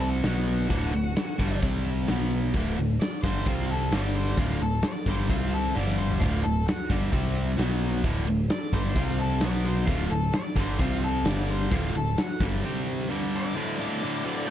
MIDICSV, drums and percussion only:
0, 0, Header, 1, 2, 480
1, 0, Start_track
1, 0, Tempo, 458365
1, 749, Time_signature, 4, 2, 24, 8
1, 15186, End_track
2, 0, Start_track
2, 0, Title_t, "Drums"
2, 11, Note_on_c, 9, 51, 61
2, 116, Note_off_c, 9, 51, 0
2, 244, Note_on_c, 9, 51, 74
2, 250, Note_on_c, 9, 38, 94
2, 349, Note_off_c, 9, 51, 0
2, 355, Note_off_c, 9, 38, 0
2, 498, Note_on_c, 9, 51, 63
2, 603, Note_off_c, 9, 51, 0
2, 731, Note_on_c, 9, 51, 88
2, 735, Note_on_c, 9, 36, 99
2, 836, Note_off_c, 9, 51, 0
2, 839, Note_off_c, 9, 36, 0
2, 976, Note_on_c, 9, 51, 64
2, 1081, Note_off_c, 9, 51, 0
2, 1216, Note_on_c, 9, 51, 88
2, 1223, Note_on_c, 9, 38, 109
2, 1321, Note_off_c, 9, 51, 0
2, 1327, Note_off_c, 9, 38, 0
2, 1459, Note_on_c, 9, 51, 65
2, 1461, Note_on_c, 9, 36, 101
2, 1563, Note_off_c, 9, 51, 0
2, 1566, Note_off_c, 9, 36, 0
2, 1699, Note_on_c, 9, 51, 88
2, 1703, Note_on_c, 9, 36, 100
2, 1803, Note_off_c, 9, 51, 0
2, 1807, Note_off_c, 9, 36, 0
2, 1931, Note_on_c, 9, 51, 73
2, 2036, Note_off_c, 9, 51, 0
2, 2175, Note_on_c, 9, 51, 81
2, 2181, Note_on_c, 9, 38, 94
2, 2279, Note_off_c, 9, 51, 0
2, 2286, Note_off_c, 9, 38, 0
2, 2413, Note_on_c, 9, 51, 70
2, 2517, Note_off_c, 9, 51, 0
2, 2655, Note_on_c, 9, 51, 93
2, 2663, Note_on_c, 9, 36, 88
2, 2760, Note_off_c, 9, 51, 0
2, 2767, Note_off_c, 9, 36, 0
2, 2905, Note_on_c, 9, 51, 68
2, 3010, Note_off_c, 9, 51, 0
2, 3155, Note_on_c, 9, 51, 94
2, 3161, Note_on_c, 9, 38, 111
2, 3259, Note_off_c, 9, 51, 0
2, 3266, Note_off_c, 9, 38, 0
2, 3387, Note_on_c, 9, 36, 98
2, 3388, Note_on_c, 9, 51, 65
2, 3492, Note_off_c, 9, 36, 0
2, 3492, Note_off_c, 9, 51, 0
2, 3626, Note_on_c, 9, 36, 102
2, 3631, Note_on_c, 9, 51, 84
2, 3731, Note_off_c, 9, 36, 0
2, 3736, Note_off_c, 9, 51, 0
2, 3868, Note_on_c, 9, 51, 69
2, 3973, Note_off_c, 9, 51, 0
2, 4105, Note_on_c, 9, 51, 82
2, 4111, Note_on_c, 9, 38, 102
2, 4210, Note_off_c, 9, 51, 0
2, 4216, Note_off_c, 9, 38, 0
2, 4346, Note_on_c, 9, 51, 64
2, 4450, Note_off_c, 9, 51, 0
2, 4577, Note_on_c, 9, 51, 81
2, 4582, Note_on_c, 9, 36, 101
2, 4682, Note_off_c, 9, 51, 0
2, 4687, Note_off_c, 9, 36, 0
2, 4820, Note_on_c, 9, 51, 63
2, 4925, Note_off_c, 9, 51, 0
2, 5051, Note_on_c, 9, 51, 90
2, 5058, Note_on_c, 9, 38, 105
2, 5156, Note_off_c, 9, 51, 0
2, 5162, Note_off_c, 9, 38, 0
2, 5301, Note_on_c, 9, 36, 92
2, 5304, Note_on_c, 9, 51, 61
2, 5406, Note_off_c, 9, 36, 0
2, 5409, Note_off_c, 9, 51, 0
2, 5544, Note_on_c, 9, 36, 93
2, 5550, Note_on_c, 9, 51, 88
2, 5649, Note_off_c, 9, 36, 0
2, 5655, Note_off_c, 9, 51, 0
2, 5791, Note_on_c, 9, 51, 70
2, 5896, Note_off_c, 9, 51, 0
2, 6038, Note_on_c, 9, 38, 49
2, 6143, Note_off_c, 9, 38, 0
2, 6148, Note_on_c, 9, 48, 58
2, 6253, Note_off_c, 9, 48, 0
2, 6275, Note_on_c, 9, 45, 81
2, 6379, Note_off_c, 9, 45, 0
2, 6398, Note_on_c, 9, 43, 79
2, 6503, Note_off_c, 9, 43, 0
2, 6509, Note_on_c, 9, 36, 93
2, 6525, Note_on_c, 9, 51, 87
2, 6614, Note_off_c, 9, 36, 0
2, 6630, Note_off_c, 9, 51, 0
2, 6762, Note_on_c, 9, 51, 76
2, 6866, Note_off_c, 9, 51, 0
2, 6997, Note_on_c, 9, 51, 98
2, 7003, Note_on_c, 9, 38, 110
2, 7101, Note_off_c, 9, 51, 0
2, 7108, Note_off_c, 9, 38, 0
2, 7224, Note_on_c, 9, 36, 107
2, 7231, Note_on_c, 9, 51, 72
2, 7329, Note_off_c, 9, 36, 0
2, 7336, Note_off_c, 9, 51, 0
2, 7464, Note_on_c, 9, 36, 100
2, 7468, Note_on_c, 9, 51, 93
2, 7569, Note_off_c, 9, 36, 0
2, 7573, Note_off_c, 9, 51, 0
2, 7701, Note_on_c, 9, 51, 75
2, 7806, Note_off_c, 9, 51, 0
2, 7946, Note_on_c, 9, 51, 85
2, 7952, Note_on_c, 9, 38, 88
2, 8051, Note_off_c, 9, 51, 0
2, 8057, Note_off_c, 9, 38, 0
2, 8191, Note_on_c, 9, 51, 64
2, 8296, Note_off_c, 9, 51, 0
2, 8418, Note_on_c, 9, 51, 80
2, 8420, Note_on_c, 9, 36, 97
2, 8523, Note_off_c, 9, 51, 0
2, 8525, Note_off_c, 9, 36, 0
2, 8658, Note_on_c, 9, 51, 64
2, 8763, Note_off_c, 9, 51, 0
2, 8899, Note_on_c, 9, 51, 90
2, 8905, Note_on_c, 9, 38, 116
2, 9004, Note_off_c, 9, 51, 0
2, 9010, Note_off_c, 9, 38, 0
2, 9140, Note_on_c, 9, 36, 94
2, 9140, Note_on_c, 9, 51, 64
2, 9244, Note_off_c, 9, 51, 0
2, 9245, Note_off_c, 9, 36, 0
2, 9378, Note_on_c, 9, 51, 89
2, 9381, Note_on_c, 9, 36, 101
2, 9483, Note_off_c, 9, 51, 0
2, 9485, Note_off_c, 9, 36, 0
2, 9616, Note_on_c, 9, 51, 71
2, 9721, Note_off_c, 9, 51, 0
2, 9849, Note_on_c, 9, 51, 77
2, 9856, Note_on_c, 9, 38, 104
2, 9954, Note_off_c, 9, 51, 0
2, 9960, Note_off_c, 9, 38, 0
2, 10093, Note_on_c, 9, 51, 68
2, 10198, Note_off_c, 9, 51, 0
2, 10341, Note_on_c, 9, 36, 104
2, 10344, Note_on_c, 9, 51, 88
2, 10446, Note_off_c, 9, 36, 0
2, 10448, Note_off_c, 9, 51, 0
2, 10578, Note_on_c, 9, 51, 67
2, 10682, Note_off_c, 9, 51, 0
2, 10819, Note_on_c, 9, 51, 93
2, 10825, Note_on_c, 9, 38, 115
2, 10923, Note_off_c, 9, 51, 0
2, 10930, Note_off_c, 9, 38, 0
2, 11062, Note_on_c, 9, 36, 97
2, 11064, Note_on_c, 9, 51, 74
2, 11167, Note_off_c, 9, 36, 0
2, 11169, Note_off_c, 9, 51, 0
2, 11294, Note_on_c, 9, 51, 89
2, 11303, Note_on_c, 9, 36, 100
2, 11399, Note_off_c, 9, 51, 0
2, 11408, Note_off_c, 9, 36, 0
2, 11542, Note_on_c, 9, 51, 70
2, 11647, Note_off_c, 9, 51, 0
2, 11782, Note_on_c, 9, 51, 90
2, 11788, Note_on_c, 9, 38, 99
2, 11887, Note_off_c, 9, 51, 0
2, 11893, Note_off_c, 9, 38, 0
2, 12024, Note_on_c, 9, 51, 76
2, 12129, Note_off_c, 9, 51, 0
2, 12268, Note_on_c, 9, 36, 106
2, 12271, Note_on_c, 9, 51, 86
2, 12373, Note_off_c, 9, 36, 0
2, 12375, Note_off_c, 9, 51, 0
2, 12514, Note_on_c, 9, 51, 69
2, 12618, Note_off_c, 9, 51, 0
2, 12751, Note_on_c, 9, 51, 92
2, 12757, Note_on_c, 9, 38, 112
2, 12856, Note_off_c, 9, 51, 0
2, 12862, Note_off_c, 9, 38, 0
2, 12990, Note_on_c, 9, 36, 102
2, 12994, Note_on_c, 9, 51, 64
2, 13095, Note_off_c, 9, 36, 0
2, 13099, Note_off_c, 9, 51, 0
2, 15186, End_track
0, 0, End_of_file